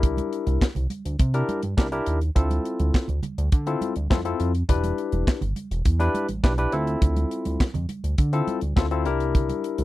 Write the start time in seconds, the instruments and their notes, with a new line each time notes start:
Already playing: analog synth bass C2, tine electric piano D4 E4 G4 A#4
0.03 kick, closed hi-hat, muted conga, low conga
0.17 closed hi-hat, muted conga, high conga
0.33 closed hi-hat
0.47 analog synth bass C2, closed hi-hat, high conga
0.61 kick, snare
0.75 analog synth bass C2, closed hi-hat, muted conga, low conga
0.90 closed hi-hat, high conga
1.05 analog synth bass D2, closed hi-hat
1.19 analog synth bass C3, kick, closed hi-hat, muted conga
1.34 tine electric piano D4 E4 G4 A#4, closed hi-hat
1.49 closed hi-hat, high conga
1.63 analog synth bass G2, closed hi-hat, high conga
1.77 analog synth bass C2, tine electric piano D4 E4 G4 A#4, kick, snare
1.92 tine electric piano D4 E4 G4 A#4, closed hi-hat
2.06 analog synth bass D#2, closed hi-hat
2.21 closed hi-hat
2.36 analog synth bass D2, tine electric piano C4 E4 F4 A4, kick, closed hi-hat, muted conga, low conga
2.50 closed hi-hat, muted conga, high conga
2.65 closed hi-hat
2.80 analog synth bass D2, closed hi-hat, high conga
2.94 kick, snare
3.08 analog synth bass D2, closed hi-hat, muted conga, low conga
3.23 closed hi-hat, high conga, low conga
3.38 analog synth bass D2, closed hi-hat
3.52 analog synth bass D3, kick, closed hi-hat
3.66 tine electric piano C4 E4 F4 A4, closed hi-hat, muted conga
3.81 closed hi-hat, high conga
3.96 analog synth bass D2, closed hi-hat, high conga
4.10 analog synth bass F2, tine electric piano C4 E4 F4 A4, kick, snare, muted conga, high conga
4.25 tine electric piano C4 E4 F4 A4, closed hi-hat
4.40 analog synth bass F2, closed hi-hat
4.54 closed hi-hat
4.69 analog synth bass E1, tine electric piano D4 E4 G4 B4, kick, closed hi-hat, muted conga, low conga
4.83 closed hi-hat, high conga
4.98 closed hi-hat
5.12 analog synth bass E1, closed hi-hat, high conga
5.27 kick, snare, muted conga
5.41 analog synth bass G1, closed hi-hat, low conga
5.56 closed hi-hat, high conga
5.71 analog synth bass E1, closed hi-hat
5.85 analog synth bass E2, kick, closed hi-hat
5.99 tine electric piano D4 E4 G4 B4, closed hi-hat, muted conga
6.14 closed hi-hat, high conga
6.29 analog synth bass A1, closed hi-hat, high conga
6.43 analog synth bass B1, tine electric piano D4 E4 G4 B4, kick, snare
6.57 tine electric piano D4 E4 G4 B4, closed hi-hat, muted conga
6.72 analog synth bass D2, tine electric piano C4 E4 F4 A4, closed hi-hat
6.87 closed hi-hat
7.02 analog synth bass D2, kick, closed hi-hat, muted conga, low conga
7.16 closed hi-hat, muted conga, high conga
7.31 closed hi-hat
7.45 analog synth bass D2, closed hi-hat, high conga
7.60 kick, snare
7.74 analog synth bass F2, closed hi-hat, low conga
7.89 closed hi-hat, high conga
8.04 analog synth bass D2, closed hi-hat
8.18 analog synth bass D3, kick, closed hi-hat, muted conga
8.33 tine electric piano C4 E4 F4 A4, closed hi-hat
8.47 closed hi-hat, high conga
8.61 analog synth bass D2, closed hi-hat, high conga
8.76 analog synth bass D2, tine electric piano C4 E4 F4 A4, kick, snare, muted conga
8.91 tine electric piano C4 E4 F4 A4, closed hi-hat
9.05 analog synth bass C2, tine electric piano D4 E4 G4 A#4, closed hi-hat
9.20 closed hi-hat
9.35 kick, closed hi-hat, muted conga, low conga
9.49 closed hi-hat, high conga
9.64 closed hi-hat
9.78 analog synth bass C2, closed hi-hat, high conga